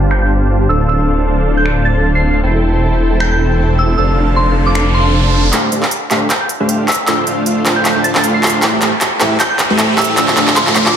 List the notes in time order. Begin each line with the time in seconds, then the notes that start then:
Already playing: G1 D4 G4 C5 F5 A5
0.11 G6, finger snap
0.22 G6
0.69 D1 D4 A4 C5 F5 A5 E6
0.89 E6
1.57 G6
1.66 finger snap
1.85 A6
2.15 C7
2.43 E1 E4 A4 C5 G5 A5, riser
3.20 G6, finger snap
3.31 G6
3.79 E6
3.98 F1 D4 A4 C5 F5 A5 E6
4.36 C6
4.66 D6
4.75 finger snap
4.94 C6
5.53 A3 D4 G4 C5 F5, clap, closed hi-hat, riser
5.72 A3 D4 G4 C5 F5, closed hi-hat
5.83 clap
5.91 closed hi-hat
6.11 A3 D4 G4 C5 F5, clap, closed hi-hat
6.30 G6, clap, closed hi-hat
6.41 G6
6.49 closed hi-hat
6.60 A3 D4 G4 C5 F5
6.69 closed hi-hat
6.88 E6, clap, closed hi-hat
6.92 closed hi-hat
6.95 closed hi-hat
7.07 A3 D4 F4 C5 G5 E6, clap, closed hi-hat
7.27 A3 D4 F4 C5 F5, closed hi-hat
7.46 closed hi-hat
7.66 A3 D4 F4 C5 F5, clap, closed hi-hat
7.76 G6
7.85 clap, closed hi-hat
7.96 A3 D4 F4 C5 A5
8.04 A6, closed hi-hat
8.15 A3 D4 F4 C5 A5, clap
8.24 A3 D4 F4 C5 F5, closed hi-hat
8.34 C7
8.43 clap, closed hi-hat
8.47 closed hi-hat
8.50 closed hi-hat
8.62 A3 E4 G4 C5 E5, clap, closed hi-hat
8.82 A3 E4 G4 C5 E5, clap, closed hi-hat
9.01 clap, closed hi-hat
9.20 A3 E4 G4 C5 E5, clap, closed hi-hat
9.40 G6, clap, closed hi-hat
9.50 G6
9.59 clap, closed hi-hat
9.70 A3 E4 G4 C5 E5
9.79 clap, closed hi-hat
9.98 E6, clap, closed hi-hat
10.01 closed hi-hat
10.04 closed hi-hat
10.17 A3 D4 F4 C5 G5 E6, clap, closed hi-hat
10.28 clap
10.37 A3 D4 F4 C5 F5, clap, closed hi-hat
10.48 clap
10.56 C6, clap, closed hi-hat
10.67 clap
10.76 A3 D4 F4 C5 F5, clap, closed hi-hat
10.86 D6, clap